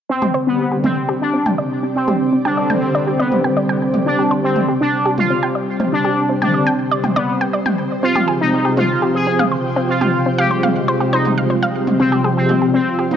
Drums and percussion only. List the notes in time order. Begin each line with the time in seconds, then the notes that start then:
0.22 mid tom
0.84 mid tom
1.46 mid tom
2.08 mid tom
2.70 mid tom
3.32 mid tom
3.94 mid tom
4.56 mid tom
5.18 mid tom
5.80 mid tom
6.42 mid tom
7.04 mid tom
7.66 mid tom
8.15 mid tom
8.77 mid tom
9.39 mid tom
10.01 mid tom
10.63 mid tom
11.25 mid tom
11.87 mid tom
12.49 mid tom
13.11 mid tom